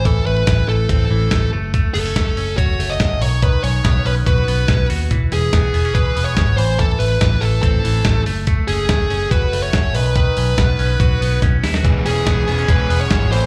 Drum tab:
HH |x---x---x---x---|x-o-x-o-x-o-x-o-|x-o-x-o-x-o-x-o-|x-o-x-o-x-o-x-o-|
SD |----o-------o---|----o-------o---|----o-------o---|----o-------o---|
BD |o---o---o---o---|o---o---o---o---|o---o---o---o---|o---o---o---o---|

HH |x-o-x-o-x-o-x-o-|x-o-x-o-x-o-x-o-|x-o-x-o-x-o-x-o-|x-o-x-o-x-o-x-o-|
SD |----o-------o---|----o-------o---|----o-------o-oo|----o-------o---|
BD |o---o---o---o---|o---o---o---o---|o---o---o---o---|o---o---o---o---|